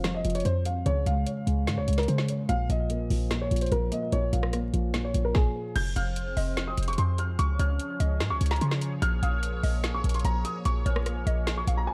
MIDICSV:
0, 0, Header, 1, 7, 480
1, 0, Start_track
1, 0, Tempo, 408163
1, 1009, Time_signature, 4, 2, 24, 8
1, 14040, End_track
2, 0, Start_track
2, 0, Title_t, "Grand piano"
2, 0, Program_c, 0, 0
2, 0, Note_on_c, 0, 77, 89
2, 124, Note_off_c, 0, 77, 0
2, 170, Note_on_c, 0, 75, 77
2, 388, Note_off_c, 0, 75, 0
2, 410, Note_on_c, 0, 73, 81
2, 519, Note_off_c, 0, 73, 0
2, 532, Note_on_c, 0, 72, 92
2, 749, Note_off_c, 0, 72, 0
2, 774, Note_on_c, 0, 77, 77
2, 990, Note_off_c, 0, 77, 0
2, 1011, Note_on_c, 0, 73, 97
2, 1228, Note_off_c, 0, 73, 0
2, 1253, Note_on_c, 0, 77, 86
2, 2044, Note_off_c, 0, 77, 0
2, 2088, Note_on_c, 0, 73, 86
2, 2307, Note_off_c, 0, 73, 0
2, 2330, Note_on_c, 0, 70, 85
2, 2439, Note_off_c, 0, 70, 0
2, 2451, Note_on_c, 0, 72, 72
2, 2668, Note_off_c, 0, 72, 0
2, 2927, Note_on_c, 0, 77, 118
2, 3146, Note_off_c, 0, 77, 0
2, 3172, Note_on_c, 0, 75, 81
2, 3963, Note_off_c, 0, 75, 0
2, 4015, Note_on_c, 0, 73, 82
2, 4231, Note_off_c, 0, 73, 0
2, 4252, Note_on_c, 0, 72, 70
2, 4360, Note_off_c, 0, 72, 0
2, 4372, Note_on_c, 0, 70, 88
2, 4589, Note_off_c, 0, 70, 0
2, 4605, Note_on_c, 0, 75, 83
2, 4825, Note_off_c, 0, 75, 0
2, 4851, Note_on_c, 0, 73, 102
2, 5069, Note_off_c, 0, 73, 0
2, 5092, Note_on_c, 0, 77, 70
2, 5883, Note_off_c, 0, 77, 0
2, 5933, Note_on_c, 0, 73, 71
2, 6150, Note_off_c, 0, 73, 0
2, 6170, Note_on_c, 0, 70, 79
2, 6278, Note_off_c, 0, 70, 0
2, 6284, Note_on_c, 0, 68, 87
2, 6738, Note_off_c, 0, 68, 0
2, 6768, Note_on_c, 0, 91, 103
2, 6987, Note_off_c, 0, 91, 0
2, 7011, Note_on_c, 0, 89, 85
2, 7803, Note_off_c, 0, 89, 0
2, 7851, Note_on_c, 0, 87, 80
2, 8068, Note_off_c, 0, 87, 0
2, 8090, Note_on_c, 0, 85, 82
2, 8198, Note_off_c, 0, 85, 0
2, 8211, Note_on_c, 0, 84, 92
2, 8429, Note_off_c, 0, 84, 0
2, 8453, Note_on_c, 0, 89, 78
2, 8669, Note_off_c, 0, 89, 0
2, 8689, Note_on_c, 0, 85, 102
2, 8907, Note_off_c, 0, 85, 0
2, 8932, Note_on_c, 0, 89, 89
2, 9723, Note_off_c, 0, 89, 0
2, 9766, Note_on_c, 0, 85, 89
2, 9985, Note_off_c, 0, 85, 0
2, 10009, Note_on_c, 0, 82, 88
2, 10118, Note_off_c, 0, 82, 0
2, 10131, Note_on_c, 0, 84, 73
2, 10348, Note_off_c, 0, 84, 0
2, 10608, Note_on_c, 0, 89, 121
2, 10827, Note_off_c, 0, 89, 0
2, 10853, Note_on_c, 0, 87, 82
2, 11644, Note_off_c, 0, 87, 0
2, 11694, Note_on_c, 0, 85, 85
2, 11910, Note_off_c, 0, 85, 0
2, 11932, Note_on_c, 0, 84, 71
2, 12040, Note_off_c, 0, 84, 0
2, 12054, Note_on_c, 0, 82, 91
2, 12270, Note_off_c, 0, 82, 0
2, 12286, Note_on_c, 0, 87, 88
2, 12506, Note_off_c, 0, 87, 0
2, 12530, Note_on_c, 0, 85, 104
2, 12748, Note_off_c, 0, 85, 0
2, 12772, Note_on_c, 0, 89, 73
2, 13563, Note_off_c, 0, 89, 0
2, 13613, Note_on_c, 0, 85, 75
2, 13829, Note_off_c, 0, 85, 0
2, 13846, Note_on_c, 0, 82, 82
2, 13956, Note_off_c, 0, 82, 0
2, 13963, Note_on_c, 0, 80, 88
2, 14040, Note_off_c, 0, 80, 0
2, 14040, End_track
3, 0, Start_track
3, 0, Title_t, "Synth pluck"
3, 0, Program_c, 1, 84
3, 7010, Note_on_c, 1, 77, 81
3, 7461, Note_off_c, 1, 77, 0
3, 7489, Note_on_c, 1, 75, 84
3, 8166, Note_off_c, 1, 75, 0
3, 8930, Note_on_c, 1, 73, 83
3, 9381, Note_off_c, 1, 73, 0
3, 9407, Note_on_c, 1, 75, 80
3, 10561, Note_off_c, 1, 75, 0
3, 10850, Note_on_c, 1, 77, 78
3, 11300, Note_off_c, 1, 77, 0
3, 11329, Note_on_c, 1, 75, 77
3, 12005, Note_off_c, 1, 75, 0
3, 12769, Note_on_c, 1, 73, 87
3, 13220, Note_off_c, 1, 73, 0
3, 13249, Note_on_c, 1, 75, 87
3, 13700, Note_off_c, 1, 75, 0
3, 13730, Note_on_c, 1, 77, 82
3, 13957, Note_off_c, 1, 77, 0
3, 14040, End_track
4, 0, Start_track
4, 0, Title_t, "Analog synth pad"
4, 0, Program_c, 2, 89
4, 6766, Note_on_c, 2, 53, 85
4, 6766, Note_on_c, 2, 60, 78
4, 6766, Note_on_c, 2, 68, 78
4, 6767, Note_on_c, 2, 72, 92
4, 8668, Note_off_c, 2, 60, 0
4, 8668, Note_off_c, 2, 72, 0
4, 8690, Note_on_c, 2, 61, 80
4, 8690, Note_on_c, 2, 73, 95
4, 10590, Note_off_c, 2, 61, 0
4, 10612, Note_on_c, 2, 58, 79
4, 14040, Note_off_c, 2, 53, 0
4, 14040, Note_off_c, 2, 58, 0
4, 14040, Note_off_c, 2, 68, 0
4, 14040, Note_off_c, 2, 73, 0
4, 14040, End_track
5, 0, Start_track
5, 0, Title_t, "Felt piano"
5, 0, Program_c, 3, 0
5, 0, Control_c, 3, 64, 127
5, 0, Note_on_c, 3, 41, 88
5, 0, Note_on_c, 3, 53, 96
5, 0, Note_on_c, 3, 60, 85
5, 50, Note_off_c, 3, 41, 0
5, 50, Note_on_c, 3, 41, 75
5, 271, Note_off_c, 3, 53, 0
5, 289, Note_on_c, 3, 53, 82
5, 513, Note_off_c, 3, 53, 0
5, 531, Note_on_c, 3, 53, 86
5, 750, Note_off_c, 3, 60, 0
5, 768, Note_on_c, 3, 60, 78
5, 1008, Note_off_c, 3, 60, 0
5, 1008, Note_on_c, 3, 49, 96
5, 1009, Note_off_c, 3, 41, 0
5, 1010, Note_off_c, 3, 53, 0
5, 1024, Control_c, 3, 64, 0
5, 1246, Control_c, 3, 64, 127
5, 1249, Note_on_c, 3, 56, 77
5, 1486, Note_on_c, 3, 73, 83
5, 1704, Note_off_c, 3, 56, 0
5, 1722, Note_on_c, 3, 56, 92
5, 1951, Note_off_c, 3, 49, 0
5, 1968, Note_on_c, 3, 49, 73
5, 2188, Note_off_c, 3, 56, 0
5, 2206, Note_on_c, 3, 56, 78
5, 2427, Note_off_c, 3, 56, 0
5, 2445, Note_on_c, 3, 56, 98
5, 2674, Note_off_c, 3, 73, 0
5, 2692, Note_on_c, 3, 73, 79
5, 2927, Note_off_c, 3, 56, 0
5, 2928, Note_off_c, 3, 49, 0
5, 2930, Note_off_c, 3, 73, 0
5, 2930, Note_on_c, 3, 46, 91
5, 2944, Control_c, 3, 64, 0
5, 3162, Control_c, 3, 64, 127
5, 3173, Note_on_c, 3, 53, 77
5, 3410, Note_on_c, 3, 58, 80
5, 3635, Note_off_c, 3, 53, 0
5, 3653, Note_on_c, 3, 53, 87
5, 3873, Note_off_c, 3, 46, 0
5, 3891, Note_on_c, 3, 46, 73
5, 4117, Note_off_c, 3, 53, 0
5, 4135, Note_on_c, 3, 53, 78
5, 4356, Note_off_c, 3, 53, 0
5, 4373, Note_on_c, 3, 53, 104
5, 4592, Note_off_c, 3, 58, 0
5, 4609, Note_on_c, 3, 58, 84
5, 4835, Note_off_c, 3, 46, 0
5, 4853, Note_on_c, 3, 46, 88
5, 5070, Note_off_c, 3, 53, 0
5, 5088, Note_on_c, 3, 53, 74
5, 5318, Note_off_c, 3, 58, 0
5, 5335, Note_on_c, 3, 58, 80
5, 5552, Note_off_c, 3, 53, 0
5, 5570, Note_on_c, 3, 53, 101
5, 5793, Note_off_c, 3, 46, 0
5, 5811, Note_on_c, 3, 46, 76
5, 6036, Note_off_c, 3, 53, 0
5, 6054, Note_on_c, 3, 53, 79
5, 6304, Control_c, 3, 64, 0
5, 6532, Note_off_c, 3, 58, 0
5, 6770, Note_off_c, 3, 46, 0
5, 6771, Note_off_c, 3, 53, 0
5, 14040, End_track
6, 0, Start_track
6, 0, Title_t, "808-style bass"
6, 0, Program_c, 4, 38
6, 0, Note_on_c, 4, 29, 104
6, 270, Note_off_c, 4, 29, 0
6, 290, Note_on_c, 4, 29, 104
6, 520, Note_off_c, 4, 29, 0
6, 528, Note_on_c, 4, 41, 108
6, 989, Note_off_c, 4, 41, 0
6, 1009, Note_on_c, 4, 37, 108
6, 1239, Note_off_c, 4, 37, 0
6, 1248, Note_on_c, 4, 37, 107
6, 1479, Note_off_c, 4, 37, 0
6, 1728, Note_on_c, 4, 37, 108
6, 1968, Note_on_c, 4, 44, 107
6, 1986, Note_off_c, 4, 37, 0
6, 2088, Note_on_c, 4, 37, 100
6, 2106, Note_off_c, 4, 44, 0
6, 2202, Note_off_c, 4, 37, 0
6, 2208, Note_on_c, 4, 37, 108
6, 2439, Note_off_c, 4, 37, 0
6, 2448, Note_on_c, 4, 49, 112
6, 2909, Note_off_c, 4, 49, 0
6, 2928, Note_on_c, 4, 34, 112
6, 3159, Note_off_c, 4, 34, 0
6, 3168, Note_on_c, 4, 34, 106
6, 3629, Note_off_c, 4, 34, 0
6, 3649, Note_on_c, 4, 34, 104
6, 4110, Note_off_c, 4, 34, 0
6, 4129, Note_on_c, 4, 34, 105
6, 4359, Note_off_c, 4, 34, 0
6, 4369, Note_on_c, 4, 34, 111
6, 4599, Note_off_c, 4, 34, 0
6, 4849, Note_on_c, 4, 34, 108
6, 5079, Note_off_c, 4, 34, 0
6, 5089, Note_on_c, 4, 34, 104
6, 5550, Note_off_c, 4, 34, 0
6, 5568, Note_on_c, 4, 34, 101
6, 6029, Note_off_c, 4, 34, 0
6, 6048, Note_on_c, 4, 34, 101
6, 6279, Note_off_c, 4, 34, 0
6, 6769, Note_on_c, 4, 29, 114
6, 6999, Note_off_c, 4, 29, 0
6, 7010, Note_on_c, 4, 29, 107
6, 7470, Note_off_c, 4, 29, 0
6, 7489, Note_on_c, 4, 29, 106
6, 7949, Note_off_c, 4, 29, 0
6, 7969, Note_on_c, 4, 29, 108
6, 8199, Note_off_c, 4, 29, 0
6, 8210, Note_on_c, 4, 41, 110
6, 8670, Note_off_c, 4, 41, 0
6, 8689, Note_on_c, 4, 37, 109
6, 8919, Note_off_c, 4, 37, 0
6, 8929, Note_on_c, 4, 37, 109
6, 9159, Note_off_c, 4, 37, 0
6, 9409, Note_on_c, 4, 37, 105
6, 9648, Note_on_c, 4, 44, 105
6, 9666, Note_off_c, 4, 37, 0
6, 9768, Note_on_c, 4, 37, 105
6, 9786, Note_off_c, 4, 44, 0
6, 9882, Note_off_c, 4, 37, 0
6, 9889, Note_on_c, 4, 37, 106
6, 10119, Note_off_c, 4, 37, 0
6, 10130, Note_on_c, 4, 49, 107
6, 10590, Note_off_c, 4, 49, 0
6, 10608, Note_on_c, 4, 34, 113
6, 10839, Note_off_c, 4, 34, 0
6, 10848, Note_on_c, 4, 34, 103
6, 11309, Note_off_c, 4, 34, 0
6, 11329, Note_on_c, 4, 34, 106
6, 11789, Note_off_c, 4, 34, 0
6, 11808, Note_on_c, 4, 34, 106
6, 12039, Note_off_c, 4, 34, 0
6, 12048, Note_on_c, 4, 34, 109
6, 12279, Note_off_c, 4, 34, 0
6, 12529, Note_on_c, 4, 34, 107
6, 12759, Note_off_c, 4, 34, 0
6, 12768, Note_on_c, 4, 34, 110
6, 13229, Note_off_c, 4, 34, 0
6, 13248, Note_on_c, 4, 34, 104
6, 13709, Note_off_c, 4, 34, 0
6, 13727, Note_on_c, 4, 34, 109
6, 13968, Note_off_c, 4, 34, 0
6, 14040, End_track
7, 0, Start_track
7, 0, Title_t, "Drums"
7, 48, Note_on_c, 9, 38, 107
7, 50, Note_on_c, 9, 42, 80
7, 165, Note_off_c, 9, 38, 0
7, 167, Note_off_c, 9, 42, 0
7, 289, Note_on_c, 9, 42, 83
7, 350, Note_off_c, 9, 42, 0
7, 350, Note_on_c, 9, 42, 70
7, 410, Note_off_c, 9, 42, 0
7, 410, Note_on_c, 9, 42, 62
7, 470, Note_off_c, 9, 42, 0
7, 470, Note_on_c, 9, 42, 50
7, 530, Note_off_c, 9, 42, 0
7, 530, Note_on_c, 9, 42, 68
7, 648, Note_off_c, 9, 42, 0
7, 769, Note_on_c, 9, 42, 81
7, 887, Note_off_c, 9, 42, 0
7, 1010, Note_on_c, 9, 42, 83
7, 1128, Note_off_c, 9, 42, 0
7, 1252, Note_on_c, 9, 42, 71
7, 1369, Note_off_c, 9, 42, 0
7, 1488, Note_on_c, 9, 42, 90
7, 1605, Note_off_c, 9, 42, 0
7, 1730, Note_on_c, 9, 42, 71
7, 1848, Note_off_c, 9, 42, 0
7, 1968, Note_on_c, 9, 38, 110
7, 1970, Note_on_c, 9, 42, 84
7, 2085, Note_off_c, 9, 38, 0
7, 2087, Note_off_c, 9, 42, 0
7, 2208, Note_on_c, 9, 42, 86
7, 2267, Note_off_c, 9, 42, 0
7, 2267, Note_on_c, 9, 42, 73
7, 2326, Note_on_c, 9, 38, 73
7, 2327, Note_off_c, 9, 42, 0
7, 2327, Note_on_c, 9, 42, 62
7, 2387, Note_off_c, 9, 42, 0
7, 2387, Note_on_c, 9, 42, 49
7, 2444, Note_off_c, 9, 38, 0
7, 2448, Note_off_c, 9, 42, 0
7, 2448, Note_on_c, 9, 42, 69
7, 2566, Note_off_c, 9, 42, 0
7, 2567, Note_on_c, 9, 38, 93
7, 2685, Note_off_c, 9, 38, 0
7, 2686, Note_on_c, 9, 42, 80
7, 2803, Note_off_c, 9, 42, 0
7, 2928, Note_on_c, 9, 42, 86
7, 3046, Note_off_c, 9, 42, 0
7, 3172, Note_on_c, 9, 42, 72
7, 3289, Note_off_c, 9, 42, 0
7, 3408, Note_on_c, 9, 42, 88
7, 3526, Note_off_c, 9, 42, 0
7, 3651, Note_on_c, 9, 46, 51
7, 3768, Note_off_c, 9, 46, 0
7, 3889, Note_on_c, 9, 38, 107
7, 3891, Note_on_c, 9, 42, 82
7, 4007, Note_off_c, 9, 38, 0
7, 4009, Note_off_c, 9, 42, 0
7, 4130, Note_on_c, 9, 42, 83
7, 4189, Note_off_c, 9, 42, 0
7, 4189, Note_on_c, 9, 42, 74
7, 4248, Note_off_c, 9, 42, 0
7, 4248, Note_on_c, 9, 42, 61
7, 4308, Note_off_c, 9, 42, 0
7, 4308, Note_on_c, 9, 42, 48
7, 4370, Note_off_c, 9, 42, 0
7, 4370, Note_on_c, 9, 42, 71
7, 4487, Note_off_c, 9, 42, 0
7, 4608, Note_on_c, 9, 42, 83
7, 4725, Note_off_c, 9, 42, 0
7, 4850, Note_on_c, 9, 42, 87
7, 4967, Note_off_c, 9, 42, 0
7, 5092, Note_on_c, 9, 42, 73
7, 5210, Note_off_c, 9, 42, 0
7, 5210, Note_on_c, 9, 37, 111
7, 5328, Note_off_c, 9, 37, 0
7, 5328, Note_on_c, 9, 42, 91
7, 5331, Note_on_c, 9, 37, 72
7, 5446, Note_off_c, 9, 42, 0
7, 5448, Note_off_c, 9, 37, 0
7, 5570, Note_on_c, 9, 42, 70
7, 5688, Note_off_c, 9, 42, 0
7, 5809, Note_on_c, 9, 38, 107
7, 5810, Note_on_c, 9, 42, 84
7, 5926, Note_off_c, 9, 38, 0
7, 5928, Note_off_c, 9, 42, 0
7, 6049, Note_on_c, 9, 42, 80
7, 6167, Note_off_c, 9, 42, 0
7, 6288, Note_on_c, 9, 36, 112
7, 6288, Note_on_c, 9, 38, 90
7, 6406, Note_off_c, 9, 36, 0
7, 6406, Note_off_c, 9, 38, 0
7, 6769, Note_on_c, 9, 42, 88
7, 6769, Note_on_c, 9, 49, 109
7, 6886, Note_off_c, 9, 42, 0
7, 6886, Note_off_c, 9, 49, 0
7, 7010, Note_on_c, 9, 42, 73
7, 7128, Note_off_c, 9, 42, 0
7, 7247, Note_on_c, 9, 42, 90
7, 7364, Note_off_c, 9, 42, 0
7, 7489, Note_on_c, 9, 46, 53
7, 7607, Note_off_c, 9, 46, 0
7, 7727, Note_on_c, 9, 38, 112
7, 7729, Note_on_c, 9, 42, 85
7, 7845, Note_off_c, 9, 38, 0
7, 7847, Note_off_c, 9, 42, 0
7, 7968, Note_on_c, 9, 42, 87
7, 8028, Note_off_c, 9, 42, 0
7, 8028, Note_on_c, 9, 42, 74
7, 8088, Note_off_c, 9, 42, 0
7, 8088, Note_on_c, 9, 42, 63
7, 8149, Note_off_c, 9, 42, 0
7, 8149, Note_on_c, 9, 42, 50
7, 8209, Note_off_c, 9, 42, 0
7, 8209, Note_on_c, 9, 42, 72
7, 8326, Note_off_c, 9, 42, 0
7, 8447, Note_on_c, 9, 42, 81
7, 8565, Note_off_c, 9, 42, 0
7, 8689, Note_on_c, 9, 42, 88
7, 8807, Note_off_c, 9, 42, 0
7, 8931, Note_on_c, 9, 42, 73
7, 9048, Note_off_c, 9, 42, 0
7, 9167, Note_on_c, 9, 42, 94
7, 9285, Note_off_c, 9, 42, 0
7, 9410, Note_on_c, 9, 42, 75
7, 9527, Note_off_c, 9, 42, 0
7, 9648, Note_on_c, 9, 38, 113
7, 9650, Note_on_c, 9, 42, 87
7, 9766, Note_off_c, 9, 38, 0
7, 9768, Note_off_c, 9, 42, 0
7, 9889, Note_on_c, 9, 42, 89
7, 9948, Note_off_c, 9, 42, 0
7, 9948, Note_on_c, 9, 42, 75
7, 10008, Note_off_c, 9, 42, 0
7, 10008, Note_on_c, 9, 38, 74
7, 10008, Note_on_c, 9, 42, 61
7, 10069, Note_off_c, 9, 42, 0
7, 10069, Note_on_c, 9, 42, 50
7, 10125, Note_off_c, 9, 38, 0
7, 10129, Note_off_c, 9, 42, 0
7, 10129, Note_on_c, 9, 42, 72
7, 10246, Note_off_c, 9, 42, 0
7, 10248, Note_on_c, 9, 38, 96
7, 10366, Note_off_c, 9, 38, 0
7, 10366, Note_on_c, 9, 42, 81
7, 10484, Note_off_c, 9, 42, 0
7, 10609, Note_on_c, 9, 42, 89
7, 10726, Note_off_c, 9, 42, 0
7, 10851, Note_on_c, 9, 42, 73
7, 10969, Note_off_c, 9, 42, 0
7, 11088, Note_on_c, 9, 42, 89
7, 11205, Note_off_c, 9, 42, 0
7, 11330, Note_on_c, 9, 46, 52
7, 11448, Note_off_c, 9, 46, 0
7, 11569, Note_on_c, 9, 38, 109
7, 11571, Note_on_c, 9, 42, 88
7, 11686, Note_off_c, 9, 38, 0
7, 11688, Note_off_c, 9, 42, 0
7, 11810, Note_on_c, 9, 42, 87
7, 11870, Note_off_c, 9, 42, 0
7, 11870, Note_on_c, 9, 42, 76
7, 11929, Note_off_c, 9, 42, 0
7, 11929, Note_on_c, 9, 42, 61
7, 11989, Note_off_c, 9, 42, 0
7, 11989, Note_on_c, 9, 42, 50
7, 12049, Note_off_c, 9, 42, 0
7, 12049, Note_on_c, 9, 42, 70
7, 12167, Note_off_c, 9, 42, 0
7, 12287, Note_on_c, 9, 42, 83
7, 12404, Note_off_c, 9, 42, 0
7, 12528, Note_on_c, 9, 42, 88
7, 12646, Note_off_c, 9, 42, 0
7, 12770, Note_on_c, 9, 42, 72
7, 12888, Note_off_c, 9, 42, 0
7, 12889, Note_on_c, 9, 37, 112
7, 13007, Note_off_c, 9, 37, 0
7, 13007, Note_on_c, 9, 42, 91
7, 13010, Note_on_c, 9, 37, 75
7, 13125, Note_off_c, 9, 42, 0
7, 13127, Note_off_c, 9, 37, 0
7, 13251, Note_on_c, 9, 42, 72
7, 13368, Note_off_c, 9, 42, 0
7, 13489, Note_on_c, 9, 38, 113
7, 13491, Note_on_c, 9, 42, 86
7, 13606, Note_off_c, 9, 38, 0
7, 13608, Note_off_c, 9, 42, 0
7, 13730, Note_on_c, 9, 42, 86
7, 13847, Note_off_c, 9, 42, 0
7, 14040, End_track
0, 0, End_of_file